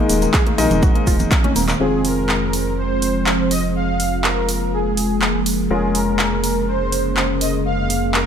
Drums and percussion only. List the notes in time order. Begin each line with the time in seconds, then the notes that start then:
0.09 open hi-hat, shaker
0.22 closed hi-hat, shaker
0.34 kick, clap, closed hi-hat, shaker
0.46 closed hi-hat, high conga
0.58 open hi-hat, shaker
0.71 closed hi-hat, low conga, shaker
0.82 kick, closed hi-hat, shaker
0.95 closed hi-hat
1.07 kick, open hi-hat, high conga, shaker
1.19 closed hi-hat, low conga, shaker
1.31 kick, clap, closed hi-hat, shaker
1.44 closed hi-hat, high conga
1.56 open hi-hat, shaker
1.69 clap, closed hi-hat, shaker
2.05 open hi-hat
2.29 clap
2.53 open hi-hat
3.02 open hi-hat
3.26 clap
3.51 open hi-hat
4.00 open hi-hat
4.24 clap
4.49 open hi-hat
4.97 open hi-hat
5.22 clap
5.46 open hi-hat
5.95 open hi-hat
6.19 clap
6.44 open hi-hat
6.92 open hi-hat
7.17 clap
7.41 open hi-hat
7.90 open hi-hat
8.14 clap